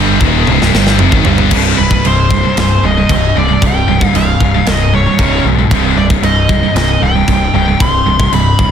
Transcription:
Already playing: G1 G2 D3 G3
0.21 D#1 D#2 A#2 D#3, kick
0.47 C#1 C#2 G#2, high tom
0.61 C1 C2 G2, snare
0.73 G1 G2 D3 G3, snare
0.87 snare
0.99 F1 F2 C3, mid tom
1.12 G#1 G#2 D#3, kick
1.25 G1 G2 D3 G3, floor tom
1.38 floor tom
1.51 C1 C2 G2 C3, kick, crash, china
1.78 C1 C2 G2 B4
1.91 C2 G2, kick
2.05 C1 C2 G2 C5, china
2.31 C2 G2, kick
2.43 C2 G2
2.57 C1 C2 G2 C5, snare, china
2.83 C1 C2 G2 D#5
2.97 C2 G2
3.09 C1 C2 G2, kick, china
3.35 C1 C2 G2 D5
3.48 C2 G2
3.62 C1 C2 G2, kick, china
3.66 G5
3.86 C1 C2 G2
4.01 C2 G2, kick
4.13 C1 C2 G2 F5, china
4.40 C1 C2 G2, kick
4.54 C2 G2
4.66 C1 C2 G2 D#5, snare, china
4.94 C2 G2 C#5
5.06 C2 G2
5.19 C#1 C#2 G#2 C#3, kick, china
5.45 B1 C#2 G#2
5.58 C#2 G#2
5.71 C1 C2 G2 C3, kick, china
5.96 C1 C2 G2 D5
6.10 C2 G2, kick
6.22 C1 C2 G2 D#5, china
6.49 C2 G2, kick
6.63 C2 G2
6.75 C1 C2 G2 D#5, snare, china
7.01 C1 C2 G2 G5
7.15 C2 G2
7.28 C1 C2 G2, kick, china
7.54 C1 C2 G2 G5
7.68 C2 G2
7.80 C1 C2 G2 C6, kick, china
8.06 C1 C2 G2
8.19 C2 G2, kick
8.32 C1 C2 G2 B5, china
8.59 D1 C2 G2, kick

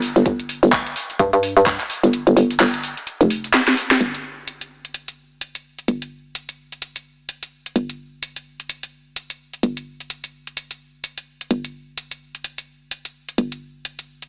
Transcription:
Already playing: G1
0.02 open hi-hat
0.16 G1, closed hi-hat, cabasa
0.26 G1, kick, closed hi-hat, cabasa
0.39 closed hi-hat, cabasa
0.49 open hi-hat
0.63 G1, closed hi-hat, cabasa
0.72 kick, clap, closed hi-hat, cabasa
0.86 closed hi-hat, cabasa
0.96 open hi-hat
1.10 closed hi-hat, cabasa
1.19 G2, kick, closed hi-hat, cabasa
1.33 G2, closed hi-hat, cabasa
1.43 open hi-hat
1.57 G2, closed hi-hat, cabasa
1.66 kick, clap, closed hi-hat, cabasa
1.80 clap, closed hi-hat, cabasa
1.90 open hi-hat
2.03 G1, closed hi-hat, cabasa
2.13 closed hi-hat, cabasa
2.27 G1, closed hi-hat, cabasa
2.37 G1, open hi-hat
2.50 closed hi-hat, cabasa
2.60 G1, clap, closed hi-hat, cabasa
2.74 closed hi-hat, cabasa
2.84 open hi-hat
2.97 closed hi-hat, cabasa
3.07 closed hi-hat, cabasa
3.21 F1, closed hi-hat, cabasa
3.30 open hi-hat
3.44 closed hi-hat, cabasa
3.54 snare, clap, closed hi-hat, cabasa
3.68 snare, closed hi-hat, cabasa
3.77 open hi-hat
3.91 snare, closed hi-hat, cabasa
4.01 G1, closed hi-hat
4.14 closed hi-hat
4.48 closed hi-hat
4.61 closed hi-hat
4.85 closed hi-hat
4.94 closed hi-hat
5.08 closed hi-hat
5.41 closed hi-hat
5.55 closed hi-hat
5.79 closed hi-hat
5.88 G1, closed hi-hat
6.02 closed hi-hat
6.35 closed hi-hat
6.49 closed hi-hat
6.72 closed hi-hat
6.82 closed hi-hat
6.96 closed hi-hat
7.29 closed hi-hat
7.43 closed hi-hat
7.66 closed hi-hat
7.76 G1, closed hi-hat
7.89 closed hi-hat
8.23 closed hi-hat
8.36 closed hi-hat
8.60 closed hi-hat
8.69 closed hi-hat
8.83 closed hi-hat
9.16 closed hi-hat
9.30 closed hi-hat
9.53 closed hi-hat
9.63 G1, closed hi-hat
9.77 closed hi-hat
10.00 closed hi-hat
10.10 closed hi-hat
10.24 closed hi-hat
10.47 closed hi-hat
10.57 closed hi-hat
10.71 closed hi-hat
11.04 closed hi-hat
11.18 closed hi-hat
11.41 closed hi-hat
11.51 G1, closed hi-hat
11.64 closed hi-hat
11.98 closed hi-hat
12.11 closed hi-hat
12.35 closed hi-hat
12.44 closed hi-hat
12.58 closed hi-hat
12.91 closed hi-hat
13.05 closed hi-hat
13.29 closed hi-hat
13.38 G1, closed hi-hat
13.52 closed hi-hat
13.85 closed hi-hat
13.99 closed hi-hat
14.22 closed hi-hat

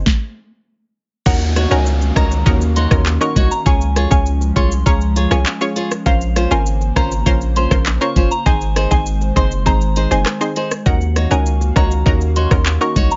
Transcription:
0.06 kick, snare
1.26 D#2 D#3 A#3 C#4 D#4 F#4 A#4 F5 F#5, kick, crash, downlifter, shaker
1.41 shaker
1.56 D#4 F#4 C#5, cross-stick, closed hi-hat, shaker
1.71 C#2 C#4 D#4 F#4 A#4 G#5, shaker
1.86 shaker
2.01 muted nylon-string guitar stroke, shaker
2.16 C#2 C#4 D#4 F#4 A#4 C#5 A#5, kick, cross-stick, closed hi-hat, shaker
2.32 shaker
2.46 D#2 C#4 D#4 F#4 A#4, kick, shaker
2.61 shaker
2.76 D#4 F#4 C#5 C6, closed hi-hat, shaker
2.91 D#2 C#4 D#4 F#4 A#4, kick, cross-stick, shaker
3.06 clap, shaker
3.21 C#4 D#4 F#4 A#4 C#6, shaker
3.36 C2 D#4 F#4 C#5, kick, closed hi-hat, shaker
3.51 A#5, shaker
3.66 C#2 F3 G#3 C#4 F4 G#4 C#5 G#5, kick, shaker
3.81 shaker
3.96 F4 G#4 C#5, cross-stick, closed hi-hat, shaker
4.11 C#2 C#4 F4 G#4 C#5 G#5, kick, shaker
4.26 shaker
4.41 muted nylon-string guitar stroke, shaker
4.56 C2 C#4 F4 G#4 C#5 C6, kick, closed hi-hat, shaker
4.72 shaker
4.86 C#2 C#4 F4 G#4 C#5 A#5, kick, shaker
5.01 shaker
5.16 F4 G#4 C#5, closed hi-hat, shaker
5.31 C2 C#4 F4 G#4 C#5 G#5, cross-stick, shaker
5.46 clap, shaker
5.61 C#4 F4 G#4 C#5, shaker
5.76 F4 G#4 C#5, closed hi-hat, shaker
5.91 cross-stick, shaker
6.06 A#1 C#3 A#3 C#4 F4 A#4 C5 F5, kick, shaker
6.21 shaker
6.36 C#4 F4 C5, cross-stick, closed hi-hat, shaker
6.51 G#1 C#4 F4 A#4 C5 G#5, shaker
6.66 shaker
6.81 muted nylon-string guitar stroke, shaker
6.96 G#1 C#4 F4 A#4 C5 A#5, kick, cross-stick, closed hi-hat, shaker
7.12 shaker
7.26 A#1 C#4 F4 A#4 C5, kick, shaker
7.41 shaker
7.56 C#4 F4 C5 C6, closed hi-hat, shaker
7.71 A#1 C#4 F4 A#4 C5, kick, cross-stick, shaker
7.86 clap, shaker
8.01 C#4 F4 A#4 C5 C#6, shaker
8.16 F#1 C#4 F4 C5, kick, closed hi-hat, shaker
8.31 A#5, shaker
8.46 G#1 D#3 G#3 C4 D#4 G#4 C5 G#5, kick, shaker
8.61 shaker
8.76 D#4 G#4 C5, cross-stick, closed hi-hat, shaker
8.91 G#1 C4 D#4 G#4 C5 G#5, kick, shaker
9.06 shaker
9.21 muted nylon-string guitar stroke, shaker
9.36 F#1 C4 D#4 G#4 C5 C6, kick, closed hi-hat, shaker
9.52 shaker
9.66 G#1 C4 D#4 G#4 C5 A#5, kick, shaker
9.81 shaker
9.96 D#4 G#4 C5, closed hi-hat, shaker
10.11 F#1 C4 D#4 G#4 C5 G#5, shaker
10.26 cross-stick, clap, shaker
10.41 C4 D#4 G#4 C5, shaker
10.56 D#4 G#4 C5, closed hi-hat, shaker
10.71 cross-stick, shaker
10.86 D#2 D#3 A#3 C#4 D#4 F#4 A#4 F5 F#5, kick, shaker
11.01 shaker
11.16 D#4 F#4 C#5, cross-stick, closed hi-hat, shaker
11.31 C#2 C#4 D#4 F#4 A#4 G#5, shaker
11.46 shaker
11.61 muted nylon-string guitar stroke, shaker
11.76 C#2 C#4 D#4 F#4 A#4 C#5 A#5, kick, cross-stick, closed hi-hat, shaker
11.91 shaker
12.06 D#2 C#4 D#4 F#4 A#4, kick, shaker
12.21 shaker
12.36 D#4 F#4 C#5 C6, closed hi-hat, shaker
12.51 D#2 C#4 D#4 F#4 A#4, kick, cross-stick, shaker
12.66 clap, shaker
12.81 C#4 D#4 F#4 A#4 C#6, shaker
12.96 C2 D#4 F#4 C#5, kick, closed hi-hat, shaker
13.11 A#5, shaker

